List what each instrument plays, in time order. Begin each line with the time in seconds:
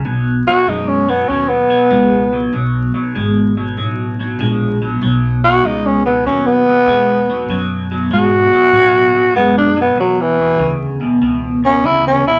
0.05 upright bass B1, clean electric guitar B2 F#3
0.47 clean electric guitar B2 F#3, tenor saxophone F#4, muted upright bass stroke
0.67 upright bass F#2, clean electric guitar B2 G#3, tenor saxophone D#4
0.88 tenor saxophone C#4
1.08 clean electric guitar B2 F#3, tenor saxophone B3
1.28 upright bass D#2, clean electric guitar B2 F#3, tenor saxophone C#4
1.49 tenor saxophone B3
1.70 clean electric guitar B2 F#3, muted upright bass stroke
1.90 upright bass C#2, clean electric guitar B2 G#3
2.33 clean electric guitar B2 F#3
2.53 upright bass B1, clean electric guitar B2 F#3
2.94 clean electric guitar B2 F#3, muted upright bass stroke
3.15 upright bass G#1, clean electric guitar B2 G#3
3.57 clean electric guitar B2 F#3
3.77 upright bass A1, clean electric guitar B2 F#3
4.19 clean electric guitar B2 F#3
4.39 upright bass A#1, clean electric guitar B2 G#3
4.82 clean electric guitar B2 F#3
5.01 upright bass B1, clean electric guitar B2 F#3
5.44 clean electric guitar B2 F#3, tenor saxophone F#4
5.64 upright bass C#2, clean electric guitar B2 G#3, tenor saxophone D#4
5.86 tenor saxophone C#4
6.06 clean electric guitar B2 F#3, tenor saxophone B3
6.25 upright bass D#2, clean electric guitar B2 F#3, tenor saxophone C#4
6.46 tenor saxophone B3
6.68 clean electric guitar B2 F#3
6.86 upright bass E2, clean electric guitar B2 G#3
7.30 clean electric guitar B2 F#3
7.48 upright bass F#2, clean electric guitar B2 F#3
7.91 clean electric guitar B2 F#3
8.10 upright bass G#2, clean electric guitar B2 G#3, tenor saxophone F#4
8.52 clean electric guitar B2 F#3, muted upright bass stroke
8.72 upright bass A2, clean electric guitar B2 F#3
9.14 clean electric guitar B2 F#3
9.34 upright bass F#2, clean electric guitar B2 G#3, tenor saxophone B3
9.58 tenor saxophone D4
9.76 clean electric guitar B2 F#3
9.81 tenor saxophone B3
9.96 upright bass E2, clean electric guitar E2 B2
10.00 tenor saxophone F#3
10.21 tenor saxophone E3
10.39 clean electric guitar E2 B2
10.58 upright bass D2, clean electric guitar E2 C#3
11.00 clean electric guitar E2 B2
11.21 upright bass C#2, clean electric guitar E2 B2
11.63 clean electric guitar E2 B2, tenor saxophone C#4
11.83 upright bass D2, clean electric guitar E2 C#3, tenor saxophone E4
12.07 tenor saxophone C#4
12.26 clean electric guitar E2 B2, tenor saxophone E4